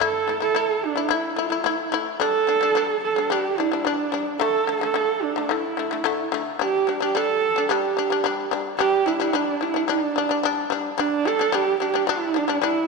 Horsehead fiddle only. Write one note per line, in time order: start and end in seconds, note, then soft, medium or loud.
0.02 0.40 A4 loud
0.43 0.87 A4 medium
0.85 1.15 D4 medium
1.13 1.95 E4 medium
2.20 2.99 A4 loud
3.05 3.32 A4 medium
3.31 3.60 G4 medium
3.58 3.87 E4 medium
3.86 4.27 D4 medium
4.41 4.79 A4 loud
4.83 5.24 A4 medium
5.23 5.52 D4 medium
5.51 6.33 E4 medium
6.63 7.00 G4 medium
7.03 7.17 G4 medium
7.16 7.71 A4 loud
7.69 8.52 G4 medium
8.79 9.08 G4 loud
9.06 9.37 E4 medium
9.35 9.64 D4 medium
9.62 9.89 E4 medium
9.90 10.68 D4 medium
10.99 11.29 D4 loud
11.27 11.56 A4 loud
11.55 11.80 G4 loud
11.81 12.11 G4 medium
12.09 12.40 E4 medium
12.38 12.64 D4 medium
12.65 12.87 E4 medium